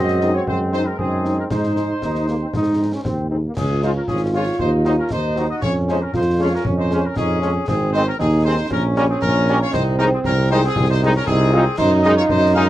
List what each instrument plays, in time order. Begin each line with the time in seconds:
Already playing: tuba F#2, trombone section G#3 C4, euphonium F#4, flute section D#5, trumpet section D#5
0.08 snare
0.21 french horn section G#3 C4 D#4, snare
0.33 flute section C#5, trumpet section C#5
0.46 tuba F#2, trombone section G#3 C4, flute section C5, trumpet section C5, concert bass drum
0.72 french horn section G#3 C4 D#4, flute section C5, trumpet section C5, snare
0.86 flute section A#4, trumpet section A#4
0.98 tuba F#2, trombone section G#3 C4, euphonium D#4, flute section G#4, trumpet section G#4, concert bass drum
1.25 french horn section G#3 C4 D#4, snare
1.38 flute section A#4, trumpet section A#4
1.50 tuba G#2, trombone section G#3 D#4, euphonium D#4, flute section C5, trumpet section C5, concert bass drum, snare, crash
1.63 snare
1.76 french horn section G#3 D#4, snare
2.01 tuba D#2, trombone section D#4, concert bass drum, snare
2.15 snare
2.28 french horn section G#3 D#4, trombone section A#3, snare
2.41 trombone section C4
2.54 tuba G#2, trombone section D#4, concert bass drum, snare
2.79 french horn section G#3 D#4
2.93 trombone section C#4
3.04 tuba D#2, trombone section C4, concert bass drum, snare
3.30 french horn section G#3 D#4, trombone section C4
3.45 trombone section A#3
3.56 tuba C#2, flute section C#4, euphonium F4, trumpet section G#4, concert bass drum, snare, crash
3.82 french horn section G#3 C#4 F4, trombone section G#3 F4, flute section D#4, trumpet section C5, snare
3.95 flute section C#4, trumpet section A#4
4.08 tuba G#1, flute section C#4, trumpet section G#4, concert bass drum, snare
4.34 french horn section G#3 C#4 F4, trombone section G#3 F4, flute section F4, trumpet section C#5
4.59 tuba D#2, flute section D#4, trumpet section C5, concert bass drum
4.85 trombone section F#3 D#4, french horn section F#3 C4 D#4, flute section D#4, trumpet section C5, snare
4.98 flute section C#4, trumpet section A#4
5.11 tuba D#2, flute section D#4, euphonium D#4, trumpet section C5, concert bass drum, snare
5.36 french horn section F#3 C4 D#4, trombone section F#3 D#4, snare
5.50 flute section F#4, trumpet section D#5
5.62 tuba F2, euphonium C#4, flute section F4, trumpet section C#5, concert bass drum, snare, crash
5.88 french horn section F3 G#3 C#4, trombone section G#3 C#4, flute section D#4, trumpet section C5, snare
6.01 flute section C#4, trumpet section A#4
6.14 tuba F2, flute section D#4, euphonium F4, trumpet section C5, concert bass drum, snare
6.39 french horn section F3 G#3 C#4, trombone section G#3 C#4, flute section F4, trumpet section C#5
6.53 flute section C#4, trumpet section A#4
6.65 tuba F2, euphonium C#4, concert bass drum
6.78 flute section D#4, trumpet section C5
6.90 french horn section F3 G#3 C#4, trombone section G#3 C#4, snare
7.05 flute section C#4, trumpet section A#4
7.16 tuba F2, flute section C#4, euphonium D#4, trumpet section G#4, concert bass drum, snare
7.42 french horn section F3 G#3 C#4, trombone section G#3 C#4, euphonium C#4, snare
7.68 tuba G#1, euphonium C4, flute section C4, trumpet section G#4, concert bass drum, snare, crash
7.93 french horn section D#3 G#3 C4, trombone section G#3 C4, flute section D#4, trumpet section C5, snare
8.06 flute section C#4, trumpet section A#4
8.19 tuba D#2, flute section C4, euphonium D#4, trumpet section G#4, concert bass drum, snare
8.45 french horn section D#3 G#3 C4, trombone section G#3 C4, flute section D#4, trumpet section C5
8.70 tuba A#1, euphonium C#4, flute section C#4, trumpet section A#4, concert bass drum
8.96 french horn section C#3 G3 C#4, trombone section G3 C#4, flute section C#4, trumpet section A#4, snare
9.10 flute section C4, trumpet section G#4
9.22 tuba A#1, flute section C#4, trumpet section A#4, concert bass drum, snare
9.48 french horn section C#3 G3 C#4, trombone section G3 C#4, snare
9.61 flute section F4, trumpet section C#5
9.73 tuba C2, euphonium C4, flute section D#4, trumpet section C5, concert bass drum, snare, crash
9.99 french horn section D#3 G#3 C4, trombone section G#3 D#4, flute section C#4, trumpet section A#4, snare
10.13 flute section C4, trumpet section G#4
10.24 tuba C2, flute section C#4, trumpet section A#4, concert bass drum, snare
10.51 french horn section D#3 G#3 C4, trombone section G#3 D#4, flute section D#4, trumpet section C5
10.64 flute section C4, trumpet section G#4
10.76 tuba C2, concert bass drum, snare
10.89 flute section D#4, trumpet section C5
11.02 french horn section D#3 G#3 C4, trombone section G#3 D#4
11.15 flute section C#4, trumpet section A#4
11.27 tuba C2, flute section C4, euphonium D#4, trumpet section G#4, concert bass drum, snare
11.53 french horn section D#3 G#3 C4, trombone section G#3 D#4, euphonium F4
11.78 tuba F#2, euphonium D#4, flute section D#4, trumpet section C5, concert bass drum, snare, crash
12.03 french horn section D#3 G#3 D#4, trombone section G#3 D#4, flute section F#4, trumpet section D#5, snare
12.17 flute section F4, trumpet section C#5
12.29 tuba F#2, flute section D#4, trumpet section C5, concert bass drum, snare
12.54 french horn section D#3 G#3 D#4, trombone section G#3 D#4, flute section G#4, trumpet section F5